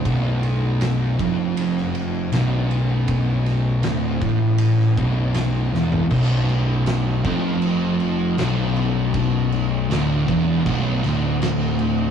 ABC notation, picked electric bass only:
X:1
M:4/4
L:1/8
Q:1/4=79
K:Bm
V:1 name="Picked electric bass" clef=bass
B,,,,3 ^E,,,3 B,,,,2- | B,,,,2 D,,, A,,,2 B,,,,2 E,,, | B,,,,3 ^E,,,3 B,,,,2- | B,,,,2 D,,, E,,, B,,,, D,,,3 |]